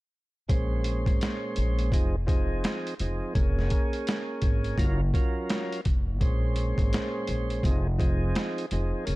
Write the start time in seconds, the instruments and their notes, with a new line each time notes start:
0.48 upright bass A#1, tonewheel organ A#2 G#3 C#4 C5, kick, closed hi-hat
0.84 closed hi-hat
1.06 upright bass G#1, kick, closed hi-hat
1.21 snare, closed hi-hat
1.56 upright bass A#1, closed hi-hat
1.79 closed hi-hat
1.92 upright bass F1, tonewheel organ F3 C4 D#4 G#4, kick, closed hi-hat
2.26 tonewheel organ F3 C4 D#4 G#4, kick, closed hi-hat
2.64 snare, closed hi-hat
2.87 closed hi-hat
2.99 upright bass F1, tonewheel organ F3 C4 D#4 G#4, closed hi-hat
3.34 upright bass F1, tonewheel organ A#3 C#4 G#4, kick, closed hi-hat
3.59 snare
3.70 kick, closed hi-hat
3.93 closed hi-hat
4.07 snare, closed hi-hat
4.42 upright bass G#1, kick, closed hi-hat
4.64 closed hi-hat
4.77 upright bass F#1, tonewheel organ F#3 C#4 F4 A#4, kick, closed hi-hat
5.14 tonewheel organ F#3 C#4 F4 A#4, kick, closed hi-hat
5.50 snare, closed hi-hat
5.72 closed hi-hat
5.85 upright bass F1, kick, closed hi-hat
6.20 upright bass A#1, tonewheel organ A#2 G#3 C#4 C5, kick, closed hi-hat
6.56 closed hi-hat
6.78 upright bass G#1, kick, closed hi-hat
6.93 snare, closed hi-hat
7.27 upright bass A#1, closed hi-hat
7.50 closed hi-hat
7.63 upright bass F1, tonewheel organ F3 C4 D#4 G#4, kick, closed hi-hat
7.98 tonewheel organ F3 C4 D#4 G#4, kick, closed hi-hat
8.35 snare, closed hi-hat
8.58 closed hi-hat
8.71 upright bass F1, tonewheel organ F3 C4 D#4 G#4, closed hi-hat
9.06 upright bass F1, tonewheel organ A#3 C#4 G#4, closed hi-hat